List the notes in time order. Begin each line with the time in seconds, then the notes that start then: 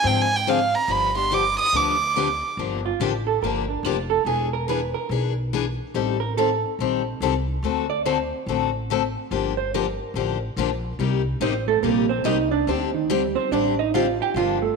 0.03 G#2 D3 F3 C4 D4 G#4 G5
0.21 G#5
0.35 G5
0.47 D3 F3 C4 D4 G#4 F5
0.75 A#5
0.88 G1 D3 F3 B3 D4 G4 B5
1.15 B3 D4 G4 C6
1.31 D3 F3 B3 D4 G4 D6
1.59 D#6
1.72 D2 D3 F3 B3 D4 G4
1.77 D6
2.16 D3 F3 B3 D4 G4
2.57 G1 D3 F3 A#3 D4 G4
2.86 F4
3.00 A1 D3 F3 A#3 D4 G4
3.27 A4
3.42 G1 D3 F3 A#3 D4 G4 A#4
3.68 D4
3.83 F1 D3 F3 A#3 D4 F4 G4
4.10 A4
4.25 E1 E3 B3 D4 G#4
4.53 A#4
4.68 E3 B3 D4 G#4 B4
4.94 A#4
5.09 B1 E3 B3 D4 G#4
5.53 E3 B3 D4 G#4
5.94 A1 D#3 G3 C4 G4 A4
6.20 A#4
6.37 D#3 G3 C4 G4 A4
6.79 A#1 D#3 G3 C4 G4 A4
7.20 C2 D#3 G3 C4 G4 A4
7.63 D2 D3 A3 C4 F#4 A4
7.90 D5
8.05 D3 A3 C4 F#4 A4 C5
8.46 A1 D3 A3 C4 F#4 A4
8.90 D3 A3 C4 F#4 A4
9.31 G1 D3 F3 A#3 D4 G4
9.57 C5
9.74 D3 F3 A#3 D4 G4 A#4
10.14 A1 D3 F3 A#3 D4 G4
10.56 A#1 D3 F3 A#3 D4 G4
10.99 C2 C3 G3 A#3 D#4 G4
11.40 A1 C3 G3 A#3 C4 D#4 G4 C5
11.68 A3 A4
11.83 A#1 C3 G3 A#3 D#4 G4 A#4
12.09 C4 C5
12.24 C2 C3 G3 A#3 D#4 G4 D#5
12.51 D4 D5
12.67 D2 D3 G3 C4 D4 G4 C5
12.94 D#3 D#4
13.10 D3 G3 C4 D4 G4
13.35 C4 C5
13.51 A1 D3 G3 C4 D4 G4 D5
13.79 D#4 D#5
13.94 D3 G3 C4 D4 F4 G4 F5
14.22 G4 G5
14.34 G1 D3 F3 A#3 D4 F4 G4 F5
14.62 A3 A4